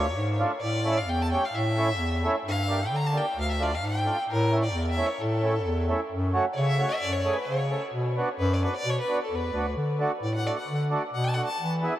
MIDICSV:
0, 0, Header, 1, 4, 480
1, 0, Start_track
1, 0, Tempo, 456621
1, 670, Time_signature, 2, 2, 24, 8
1, 12608, End_track
2, 0, Start_track
2, 0, Title_t, "Violin"
2, 0, Program_c, 0, 40
2, 0, Note_on_c, 0, 73, 90
2, 389, Note_off_c, 0, 73, 0
2, 642, Note_on_c, 0, 74, 93
2, 1024, Note_on_c, 0, 77, 88
2, 1040, Note_off_c, 0, 74, 0
2, 1149, Note_on_c, 0, 79, 95
2, 1165, Note_off_c, 0, 77, 0
2, 1284, Note_on_c, 0, 81, 97
2, 1300, Note_off_c, 0, 79, 0
2, 1383, Note_off_c, 0, 81, 0
2, 1389, Note_on_c, 0, 79, 89
2, 1524, Note_on_c, 0, 77, 78
2, 1539, Note_off_c, 0, 79, 0
2, 1631, Note_on_c, 0, 76, 94
2, 1647, Note_off_c, 0, 77, 0
2, 2350, Note_off_c, 0, 76, 0
2, 2615, Note_on_c, 0, 77, 103
2, 2969, Note_on_c, 0, 79, 88
2, 2984, Note_off_c, 0, 77, 0
2, 3109, Note_on_c, 0, 82, 99
2, 3125, Note_off_c, 0, 79, 0
2, 3222, Note_on_c, 0, 81, 97
2, 3238, Note_off_c, 0, 82, 0
2, 3337, Note_on_c, 0, 79, 88
2, 3352, Note_off_c, 0, 81, 0
2, 3563, Note_off_c, 0, 79, 0
2, 3581, Note_on_c, 0, 77, 96
2, 3677, Note_off_c, 0, 77, 0
2, 3691, Note_on_c, 0, 76, 80
2, 3815, Note_on_c, 0, 74, 83
2, 3831, Note_off_c, 0, 76, 0
2, 3939, Note_on_c, 0, 77, 84
2, 3955, Note_off_c, 0, 74, 0
2, 4047, Note_on_c, 0, 79, 101
2, 4063, Note_off_c, 0, 77, 0
2, 4398, Note_off_c, 0, 79, 0
2, 4530, Note_on_c, 0, 70, 98
2, 4854, Note_off_c, 0, 70, 0
2, 4869, Note_on_c, 0, 74, 80
2, 5129, Note_off_c, 0, 74, 0
2, 5166, Note_on_c, 0, 76, 82
2, 5324, Note_on_c, 0, 73, 74
2, 5340, Note_off_c, 0, 76, 0
2, 5467, Note_on_c, 0, 69, 84
2, 5483, Note_off_c, 0, 73, 0
2, 6187, Note_off_c, 0, 69, 0
2, 6866, Note_on_c, 0, 74, 71
2, 6902, Note_on_c, 0, 73, 85
2, 6918, Note_off_c, 0, 74, 0
2, 6995, Note_off_c, 0, 73, 0
2, 7002, Note_on_c, 0, 76, 98
2, 7130, Note_on_c, 0, 73, 89
2, 7146, Note_off_c, 0, 76, 0
2, 7244, Note_on_c, 0, 76, 90
2, 7260, Note_off_c, 0, 73, 0
2, 7346, Note_on_c, 0, 74, 103
2, 7362, Note_off_c, 0, 76, 0
2, 7490, Note_on_c, 0, 73, 84
2, 7506, Note_off_c, 0, 74, 0
2, 7561, Note_on_c, 0, 74, 72
2, 7577, Note_off_c, 0, 73, 0
2, 7588, Note_on_c, 0, 73, 79
2, 7604, Note_off_c, 0, 74, 0
2, 7707, Note_on_c, 0, 71, 76
2, 7723, Note_off_c, 0, 73, 0
2, 7830, Note_on_c, 0, 73, 74
2, 7846, Note_off_c, 0, 71, 0
2, 8210, Note_off_c, 0, 73, 0
2, 8823, Note_on_c, 0, 71, 88
2, 8972, Note_on_c, 0, 74, 87
2, 8988, Note_off_c, 0, 71, 0
2, 9081, Note_off_c, 0, 74, 0
2, 9090, Note_on_c, 0, 71, 78
2, 9192, Note_off_c, 0, 71, 0
2, 9210, Note_on_c, 0, 74, 96
2, 9353, Note_on_c, 0, 73, 93
2, 9369, Note_off_c, 0, 74, 0
2, 9452, Note_off_c, 0, 73, 0
2, 9469, Note_on_c, 0, 71, 81
2, 9674, Note_off_c, 0, 71, 0
2, 9716, Note_on_c, 0, 69, 64
2, 9832, Note_on_c, 0, 71, 74
2, 9848, Note_off_c, 0, 69, 0
2, 10172, Note_off_c, 0, 71, 0
2, 10754, Note_on_c, 0, 74, 81
2, 10864, Note_off_c, 0, 74, 0
2, 10878, Note_on_c, 0, 78, 89
2, 11000, Note_on_c, 0, 74, 73
2, 11015, Note_off_c, 0, 78, 0
2, 11108, Note_off_c, 0, 74, 0
2, 11114, Note_on_c, 0, 78, 68
2, 11336, Note_off_c, 0, 78, 0
2, 11715, Note_on_c, 0, 78, 85
2, 11816, Note_on_c, 0, 81, 87
2, 11832, Note_off_c, 0, 78, 0
2, 11921, Note_on_c, 0, 78, 83
2, 11937, Note_off_c, 0, 81, 0
2, 12037, Note_off_c, 0, 78, 0
2, 12043, Note_on_c, 0, 81, 91
2, 12279, Note_off_c, 0, 81, 0
2, 12608, End_track
3, 0, Start_track
3, 0, Title_t, "Accordion"
3, 0, Program_c, 1, 21
3, 409, Note_on_c, 1, 57, 68
3, 417, Note_on_c, 1, 62, 70
3, 422, Note_on_c, 1, 65, 77
3, 540, Note_off_c, 1, 57, 0
3, 543, Note_off_c, 1, 62, 0
3, 546, Note_off_c, 1, 65, 0
3, 884, Note_on_c, 1, 57, 67
3, 895, Note_on_c, 1, 61, 61
3, 905, Note_on_c, 1, 64, 66
3, 1017, Note_off_c, 1, 57, 0
3, 1023, Note_off_c, 1, 61, 0
3, 1027, Note_off_c, 1, 64, 0
3, 1383, Note_on_c, 1, 57, 54
3, 1389, Note_on_c, 1, 61, 55
3, 1396, Note_on_c, 1, 67, 72
3, 1506, Note_off_c, 1, 57, 0
3, 1510, Note_off_c, 1, 61, 0
3, 1513, Note_off_c, 1, 67, 0
3, 1861, Note_on_c, 1, 57, 63
3, 1861, Note_on_c, 1, 61, 63
3, 1876, Note_on_c, 1, 64, 73
3, 1985, Note_off_c, 1, 57, 0
3, 1985, Note_off_c, 1, 61, 0
3, 1993, Note_off_c, 1, 64, 0
3, 2348, Note_on_c, 1, 57, 64
3, 2358, Note_on_c, 1, 61, 65
3, 2363, Note_on_c, 1, 64, 87
3, 2468, Note_off_c, 1, 57, 0
3, 2474, Note_off_c, 1, 61, 0
3, 2476, Note_off_c, 1, 64, 0
3, 2817, Note_on_c, 1, 58, 67
3, 2821, Note_on_c, 1, 62, 60
3, 2836, Note_on_c, 1, 67, 65
3, 2943, Note_off_c, 1, 58, 0
3, 2945, Note_off_c, 1, 62, 0
3, 2953, Note_off_c, 1, 67, 0
3, 3292, Note_on_c, 1, 58, 60
3, 3298, Note_on_c, 1, 62, 49
3, 3314, Note_on_c, 1, 67, 59
3, 3420, Note_off_c, 1, 58, 0
3, 3424, Note_off_c, 1, 62, 0
3, 3431, Note_off_c, 1, 67, 0
3, 3778, Note_on_c, 1, 57, 68
3, 3789, Note_on_c, 1, 62, 57
3, 3791, Note_on_c, 1, 65, 76
3, 3903, Note_off_c, 1, 57, 0
3, 3909, Note_off_c, 1, 62, 0
3, 3910, Note_off_c, 1, 65, 0
3, 4252, Note_on_c, 1, 57, 60
3, 4264, Note_on_c, 1, 62, 54
3, 4273, Note_on_c, 1, 65, 60
3, 4380, Note_off_c, 1, 57, 0
3, 4386, Note_off_c, 1, 62, 0
3, 4391, Note_off_c, 1, 65, 0
3, 4736, Note_on_c, 1, 57, 72
3, 4745, Note_on_c, 1, 61, 56
3, 4754, Note_on_c, 1, 64, 78
3, 4862, Note_off_c, 1, 57, 0
3, 4867, Note_off_c, 1, 61, 0
3, 4871, Note_off_c, 1, 64, 0
3, 5210, Note_on_c, 1, 57, 63
3, 5221, Note_on_c, 1, 61, 58
3, 5226, Note_on_c, 1, 64, 73
3, 5339, Note_off_c, 1, 57, 0
3, 5344, Note_off_c, 1, 61, 0
3, 5347, Note_off_c, 1, 64, 0
3, 5696, Note_on_c, 1, 57, 61
3, 5701, Note_on_c, 1, 61, 61
3, 5708, Note_on_c, 1, 64, 79
3, 5822, Note_off_c, 1, 57, 0
3, 5824, Note_off_c, 1, 61, 0
3, 5828, Note_off_c, 1, 64, 0
3, 6184, Note_on_c, 1, 57, 70
3, 6195, Note_on_c, 1, 61, 73
3, 6195, Note_on_c, 1, 64, 74
3, 6306, Note_off_c, 1, 57, 0
3, 6311, Note_off_c, 1, 61, 0
3, 6311, Note_off_c, 1, 64, 0
3, 6656, Note_on_c, 1, 61, 73
3, 6657, Note_on_c, 1, 57, 69
3, 6665, Note_on_c, 1, 66, 91
3, 6782, Note_off_c, 1, 57, 0
3, 6782, Note_off_c, 1, 61, 0
3, 6787, Note_off_c, 1, 66, 0
3, 7127, Note_on_c, 1, 57, 60
3, 7136, Note_on_c, 1, 61, 54
3, 7149, Note_on_c, 1, 66, 71
3, 7257, Note_off_c, 1, 57, 0
3, 7262, Note_off_c, 1, 61, 0
3, 7269, Note_off_c, 1, 66, 0
3, 7615, Note_on_c, 1, 57, 67
3, 7624, Note_on_c, 1, 61, 67
3, 7630, Note_on_c, 1, 68, 76
3, 7742, Note_off_c, 1, 57, 0
3, 7746, Note_off_c, 1, 61, 0
3, 7749, Note_off_c, 1, 68, 0
3, 8095, Note_on_c, 1, 57, 56
3, 8102, Note_on_c, 1, 61, 53
3, 8112, Note_on_c, 1, 69, 57
3, 8222, Note_off_c, 1, 57, 0
3, 8226, Note_off_c, 1, 61, 0
3, 8230, Note_off_c, 1, 69, 0
3, 8582, Note_on_c, 1, 59, 84
3, 8595, Note_on_c, 1, 62, 73
3, 8601, Note_on_c, 1, 66, 82
3, 8706, Note_off_c, 1, 59, 0
3, 8712, Note_off_c, 1, 62, 0
3, 8715, Note_off_c, 1, 66, 0
3, 9059, Note_on_c, 1, 59, 60
3, 9064, Note_on_c, 1, 62, 58
3, 9079, Note_on_c, 1, 66, 61
3, 9185, Note_off_c, 1, 59, 0
3, 9187, Note_off_c, 1, 62, 0
3, 9195, Note_off_c, 1, 66, 0
3, 9539, Note_on_c, 1, 62, 52
3, 9542, Note_on_c, 1, 59, 66
3, 9555, Note_on_c, 1, 66, 76
3, 9665, Note_off_c, 1, 62, 0
3, 9666, Note_off_c, 1, 59, 0
3, 9673, Note_off_c, 1, 66, 0
3, 10021, Note_on_c, 1, 59, 64
3, 10034, Note_on_c, 1, 62, 50
3, 10044, Note_on_c, 1, 66, 72
3, 10146, Note_off_c, 1, 59, 0
3, 10152, Note_off_c, 1, 62, 0
3, 10157, Note_off_c, 1, 66, 0
3, 10505, Note_on_c, 1, 57, 72
3, 10514, Note_on_c, 1, 62, 65
3, 10527, Note_on_c, 1, 66, 84
3, 10628, Note_off_c, 1, 57, 0
3, 10632, Note_off_c, 1, 62, 0
3, 10639, Note_off_c, 1, 66, 0
3, 10989, Note_on_c, 1, 57, 61
3, 10996, Note_on_c, 1, 62, 52
3, 11000, Note_on_c, 1, 66, 62
3, 11110, Note_off_c, 1, 57, 0
3, 11114, Note_off_c, 1, 62, 0
3, 11116, Note_off_c, 1, 66, 0
3, 11462, Note_on_c, 1, 57, 82
3, 11464, Note_on_c, 1, 62, 63
3, 11476, Note_on_c, 1, 66, 74
3, 11587, Note_off_c, 1, 57, 0
3, 11588, Note_off_c, 1, 62, 0
3, 11594, Note_off_c, 1, 66, 0
3, 11938, Note_on_c, 1, 57, 59
3, 11947, Note_on_c, 1, 62, 51
3, 11959, Note_on_c, 1, 66, 55
3, 12065, Note_off_c, 1, 57, 0
3, 12069, Note_off_c, 1, 62, 0
3, 12075, Note_off_c, 1, 66, 0
3, 12421, Note_on_c, 1, 59, 73
3, 12431, Note_on_c, 1, 64, 67
3, 12436, Note_on_c, 1, 68, 90
3, 12546, Note_off_c, 1, 59, 0
3, 12551, Note_off_c, 1, 64, 0
3, 12554, Note_off_c, 1, 68, 0
3, 12608, End_track
4, 0, Start_track
4, 0, Title_t, "Bass clarinet"
4, 0, Program_c, 2, 71
4, 0, Note_on_c, 2, 38, 108
4, 169, Note_on_c, 2, 44, 97
4, 184, Note_off_c, 2, 38, 0
4, 463, Note_off_c, 2, 44, 0
4, 650, Note_on_c, 2, 45, 85
4, 1127, Note_on_c, 2, 40, 92
4, 1143, Note_off_c, 2, 45, 0
4, 1422, Note_off_c, 2, 40, 0
4, 1606, Note_on_c, 2, 45, 94
4, 2086, Note_on_c, 2, 40, 94
4, 2102, Note_off_c, 2, 45, 0
4, 2381, Note_off_c, 2, 40, 0
4, 2573, Note_on_c, 2, 43, 87
4, 3060, Note_on_c, 2, 50, 89
4, 3076, Note_off_c, 2, 43, 0
4, 3350, Note_off_c, 2, 50, 0
4, 3531, Note_on_c, 2, 38, 88
4, 4018, Note_on_c, 2, 44, 82
4, 4034, Note_off_c, 2, 38, 0
4, 4309, Note_off_c, 2, 44, 0
4, 4509, Note_on_c, 2, 45, 110
4, 4984, Note_on_c, 2, 40, 97
4, 4999, Note_off_c, 2, 45, 0
4, 5273, Note_off_c, 2, 40, 0
4, 5469, Note_on_c, 2, 45, 96
4, 5948, Note_on_c, 2, 40, 96
4, 5964, Note_off_c, 2, 45, 0
4, 6236, Note_off_c, 2, 40, 0
4, 6427, Note_on_c, 2, 42, 98
4, 6715, Note_off_c, 2, 42, 0
4, 6900, Note_on_c, 2, 49, 105
4, 7191, Note_off_c, 2, 49, 0
4, 7380, Note_on_c, 2, 42, 82
4, 7671, Note_off_c, 2, 42, 0
4, 7862, Note_on_c, 2, 49, 91
4, 8152, Note_off_c, 2, 49, 0
4, 8340, Note_on_c, 2, 47, 90
4, 8631, Note_off_c, 2, 47, 0
4, 8825, Note_on_c, 2, 42, 108
4, 9115, Note_off_c, 2, 42, 0
4, 9300, Note_on_c, 2, 47, 91
4, 9447, Note_off_c, 2, 47, 0
4, 9780, Note_on_c, 2, 40, 78
4, 10001, Note_off_c, 2, 40, 0
4, 10015, Note_on_c, 2, 38, 83
4, 10238, Note_off_c, 2, 38, 0
4, 10265, Note_on_c, 2, 50, 89
4, 10555, Note_off_c, 2, 50, 0
4, 10749, Note_on_c, 2, 45, 89
4, 11038, Note_off_c, 2, 45, 0
4, 11223, Note_on_c, 2, 50, 94
4, 11513, Note_off_c, 2, 50, 0
4, 11703, Note_on_c, 2, 47, 96
4, 11993, Note_off_c, 2, 47, 0
4, 12188, Note_on_c, 2, 52, 87
4, 12477, Note_off_c, 2, 52, 0
4, 12608, End_track
0, 0, End_of_file